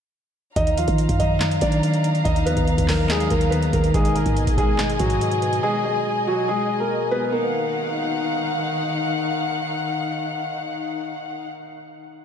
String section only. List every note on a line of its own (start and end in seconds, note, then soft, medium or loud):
0.56 3.91 F5 medium
0.56 3.91 A#5 medium
3.94 7.29 G#4 medium
3.94 7.29 D#5 medium
3.94 7.29 G#5 medium
7.32 11.46 D#3 medium
7.32 11.46 D#4 medium
7.32 11.46 F5 medium
7.32 11.46 F#5 medium